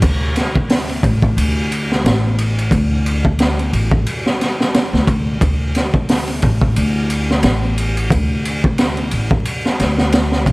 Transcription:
0.02 D2, kick, crash, ride
0.36 snare, ride
0.56 kick
0.69 snare, open hi-hat
0.89 ride
1.03 A1, kick, ride
1.22 kick
1.37 D2, ride
1.72 ride
1.92 snare
2.04 A1, snare, ride
2.38 ride
2.58 ride
2.71 D2, kick, ride
3.06 ride
3.25 kick
3.39 snare, ride
3.59 ride
3.73 A1, ride
3.91 kick
4.06 ride
4.26 snare
4.41 snare, ride
4.60 snare
4.74 snare, ride
4.93 D2, snare
5.07 kick, ride
5.41 D2, kick, ride
5.75 snare, ride
5.94 kick
6.09 snare, open hi-hat
6.27 ride
6.42 A1, kick, ride
6.61 kick
6.76 D2, ride
7.10 ride
7.30 snare
7.43 A1, snare, ride
7.78 ride
7.97 ride
8.10 D2, kick, ride
8.45 ride
8.64 kick
8.78 snare, ride
8.97 ride
9.11 A1, ride
9.31 kick
9.45 ride
9.66 snare
9.80 D2, snare, ride
9.98 snare
10.12 snare, ride
10.32 snare
10.46 A1, kick, ride

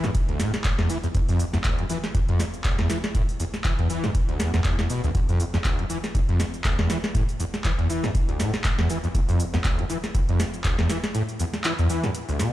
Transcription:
0.04 F2, snare, closed hi-hat, cabasa
0.15 kick, closed hi-hat, cabasa
0.29 D2, closed hi-hat
0.40 A2, snare, open hi-hat, cabasa
0.54 snare, closed hi-hat, cabasa
0.64 kick, clap, closed hi-hat, cabasa
0.79 E2, snare, closed hi-hat
0.89 E3, open hi-hat, cabasa
1.04 E2, closed hi-hat, cabasa
1.15 E2, kick, closed hi-hat, cabasa
1.28 F2, open hi-hat, cabasa
1.40 E2, open hi-hat, cabasa
1.53 E2, snare, closed hi-hat, cabasa
1.64 D2, kick, clap, closed hi-hat, cabasa
1.79 G2, closed hi-hat
1.89 E3, open hi-hat, cabasa
2.04 snare, closed hi-hat, cabasa
2.14 E2, kick, closed hi-hat, cabasa
2.29 F2, closed hi-hat
2.40 E2, snare, open hi-hat, cabasa
2.54 closed hi-hat, cabasa
2.64 D2, kick, clap, closed hi-hat, cabasa
2.79 E2, snare, closed hi-hat
2.90 E3, snare, open hi-hat, cabasa
3.04 snare, closed hi-hat, cabasa
3.15 A2, kick, closed hi-hat, cabasa
3.29 open hi-hat, cabasa
3.39 E2, open hi-hat, cabasa
3.54 snare, closed hi-hat, cabasa
3.64 E3, kick, clap, closed hi-hat, cabasa
3.79 E2, closed hi-hat
3.90 E3, open hi-hat, cabasa
4.04 F2, snare, closed hi-hat, cabasa
4.15 kick, closed hi-hat, cabasa
4.29 D2, closed hi-hat
4.40 E2, snare, open hi-hat, cabasa
4.54 E2, snare, closed hi-hat, cabasa
4.64 E2, kick, clap, closed hi-hat, cabasa
4.79 E2, snare, closed hi-hat, cabasa
4.90 B2, open hi-hat, cabasa
5.04 D2, closed hi-hat, cabasa
5.15 E2, kick, closed hi-hat, cabasa
5.29 F2, open hi-hat, cabasa
5.40 E2, open hi-hat, cabasa
5.54 E2, snare, closed hi-hat, cabasa
5.64 D2, kick, clap, closed hi-hat, cabasa
5.79 G2, closed hi-hat
5.90 E3, open hi-hat, cabasa
6.04 snare, closed hi-hat, cabasa
6.15 E2, kick, closed hi-hat, cabasa
6.29 F2, closed hi-hat
6.40 E2, snare, open hi-hat, cabasa
6.54 closed hi-hat, cabasa
6.64 D2, kick, clap, closed hi-hat, cabasa
6.79 E2, snare, closed hi-hat
6.89 E3, snare, open hi-hat, cabasa
7.04 snare, closed hi-hat, cabasa
7.14 A2, kick, closed hi-hat, cabasa
7.29 open hi-hat, cabasa
7.39 E2, open hi-hat, cabasa
7.54 snare, closed hi-hat, cabasa
7.64 E3, kick, clap, closed hi-hat, cabasa
7.79 E2, closed hi-hat
7.90 E3, open hi-hat, cabasa
8.04 F2, snare, closed hi-hat, cabasa
8.15 kick, closed hi-hat, cabasa
8.29 D2, closed hi-hat
8.40 A2, snare, open hi-hat, cabasa
8.54 snare, closed hi-hat, cabasa
8.64 kick, clap, closed hi-hat, cabasa
8.79 E2, snare, closed hi-hat
8.90 E3, open hi-hat, cabasa
9.04 E2, closed hi-hat, cabasa
9.15 E2, kick, closed hi-hat, cabasa
9.29 F2, open hi-hat, cabasa
9.40 E2, open hi-hat, cabasa
9.54 E2, snare, closed hi-hat, cabasa
9.64 D2, kick, clap, closed hi-hat, cabasa
9.79 G2, closed hi-hat
9.90 E3, open hi-hat, cabasa
10.04 snare, closed hi-hat, cabasa
10.15 E2, kick, closed hi-hat, cabasa
10.29 F2, closed hi-hat
10.40 E2, snare, open hi-hat, cabasa
10.54 closed hi-hat, cabasa
10.64 D2, kick, clap, closed hi-hat, cabasa
10.79 E2, snare, closed hi-hat
10.90 E3, snare, open hi-hat, cabasa
11.04 snare, closed hi-hat, cabasa
11.15 A2, closed hi-hat, cabasa
11.29 open hi-hat, cabasa
11.40 E2, open hi-hat, cabasa
11.54 snare, closed hi-hat, cabasa
11.64 E3, clap, closed hi-hat, cabasa
11.79 E2, closed hi-hat, cabasa
11.90 E3, open hi-hat, cabasa
12.04 F2, snare, closed hi-hat, cabasa
12.15 closed hi-hat, cabasa
12.29 D2, open hi-hat, cabasa
12.40 B2, snare, open hi-hat, cabasa

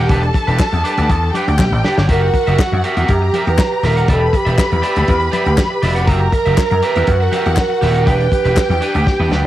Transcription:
Already playing: G4 F#5
0.00 A#4
0.09 E1 D4 G4 A4 B4 A5, kick, closed hi-hat, muted conga, low conga
0.23 muted clean electric guitar stroke, closed hi-hat
0.34 muted clean electric guitar stroke, kick, closed hi-hat, high conga
0.47 E1 D4 G4 B4, closed hi-hat
0.59 muted clean electric guitar stroke, muted slap bass stroke, kick, snare, clap, high conga
0.73 E2, muted clean electric guitar stroke, closed hi-hat, high conga
0.84 D4 G4 B4, closed hi-hat
0.97 D2 D4 G4 B4, closed hi-hat, high conga, low conga
1.08 E2, muted clean electric guitar stroke, kick, closed hi-hat, muted conga
1.23 muted clean electric guitar stroke
1.34 D4 G4 B4 G5, closed hi-hat, high conga
1.48 D2, muted clean electric guitar stroke, closed hi-hat
1.59 B1, muted clean electric guitar stroke, kick, snare, clap, high conga
1.72 A1, muted clean electric guitar stroke
1.84 D4 G4 B4, snare, muted conga, low conga
1.97 G1 D4 G4 C#5, snare
2.09 F#1 F#4 G4 A#4 E5 F#5, kick, closed hi-hat, muted conga, low conga
2.22 muted clean electric guitar stroke
2.33 muted clean electric guitar stroke, kick, closed hi-hat, high conga
2.47 F#1 G4 A#4 E5, closed hi-hat
2.59 F#4, muted clean electric guitar stroke, muted slap bass stroke, kick, snare, clap, muted conga, high conga
2.72 F#2, muted clean electric guitar stroke, high conga
2.84 G4 A#4 E5, closed hi-hat
2.97 E2 G4 A#4 E5, closed hi-hat, high conga
3.08 F#2 G4 A#5, kick, closed hi-hat, muted conga
3.22 muted clean electric guitar stroke
3.33 G4 A#4 E5, closed hi-hat, muted conga, high conga
3.47 E2 B4, muted clean electric guitar stroke, closed hi-hat
3.58 muted clean electric guitar stroke, kick, snare, clap, high conga
3.72 muted clean electric guitar stroke
3.83 D#1 G4 A#4 E5, snare, open hi-hat, muted conga, low conga
3.97 G4 A#4 F#5, closed hi-hat
4.08 E1 G4 A4 B4 D5 E5 B5, kick, closed hi-hat, low conga
4.21 muted clean electric guitar stroke
4.33 G4, muted clean electric guitar stroke, kick, closed hi-hat, high conga
4.45 E1 G4 D5 E5, closed hi-hat
4.57 muted clean electric guitar stroke, muted slap bass stroke, kick, snare, clap, muted conga, high conga
4.70 E2, muted clean electric guitar stroke, closed hi-hat, high conga
4.82 G4 D5 E5, closed hi-hat, muted conga
4.95 D2 G4 D5 E5, closed hi-hat, high conga
5.07 E2, kick, closed hi-hat, muted conga
5.20 muted clean electric guitar stroke, closed hi-hat
5.32 G4 D5 E5, closed hi-hat, muted conga, high conga
5.45 D2, muted clean electric guitar stroke, closed hi-hat
5.58 muted clean electric guitar stroke, kick, snare, clap, high conga
5.70 muted clean electric guitar stroke
5.82 F1 F#4 G4 D5 E5, snare, open hi-hat, low conga
5.95 G4 D5 F#5, closed hi-hat
6.07 F#1 F#4 G4 A#4 E5 A#5, kick, closed hi-hat, low conga
6.21 muted clean electric guitar stroke
6.32 A#4, muted clean electric guitar stroke, kick, closed hi-hat, high conga
6.46 F#1 G4 A#4 E5, closed hi-hat
6.57 muted clean electric guitar stroke, muted slap bass stroke, kick, snare, clap, high conga
6.71 F#2, muted clean electric guitar stroke, closed hi-hat, high conga
6.82 G4 A#4 B4 E5, closed hi-hat
6.95 E2 G4 A#4 E5, closed hi-hat, high conga
7.07 F#2 F#4 F#5, kick, closed hi-hat
7.21 A#4, muted clean electric guitar stroke
7.32 G4 A#4 E5, closed hi-hat, high conga
7.46 E2, muted clean electric guitar stroke, closed hi-hat
7.56 A#4, muted clean electric guitar stroke, kick, snare, clap, muted conga, high conga
7.70 muted clean electric guitar stroke
7.81 D#1 G4 A#4 E5, snare, open hi-hat, low conga
7.94 G4 A#4 F#5, closed hi-hat
8.06 E1 D4 G4 B4 G5, kick, closed hi-hat, low conga
8.20 muted clean electric guitar stroke, closed hi-hat
8.32 muted clean electric guitar stroke, kick, closed hi-hat, muted conga, high conga
8.45 E1 D4 G4 B4, closed hi-hat
8.57 muted clean electric guitar stroke, muted slap bass stroke, kick, snare, clap, muted conga, high conga
8.69 E2, muted clean electric guitar stroke, closed hi-hat, high conga
8.81 D4 G4 B4, closed hi-hat
8.94 D2 D4 G4 B4, closed hi-hat, high conga
9.05 muted clean electric guitar stroke, kick, snare, muted conga
9.20 E2 D4 G4 B4
9.31 D2 D4 G4 B4, snare, muted conga, high conga

